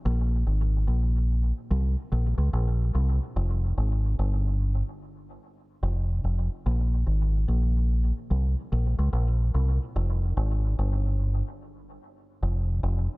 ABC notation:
X:1
M:4/4
L:1/16
Q:"Swing 16ths" 1/4=73
K:Fm
V:1 name="Fingered electric bass" clef=bass
B,,,2 A,,,2 B,,,3 z C,, z B,,, D,, B,,,2 C,, z | F,,,2 A,,,2 G,,,3 z4 z F,,,2 F,,, z | B,,,2 A,,,2 B,,,3 z C,, z B,,, D,, B,,,2 C,, z | F,,,2 A,,,2 G,,,3 z4 z F,,,2 F,,, z |]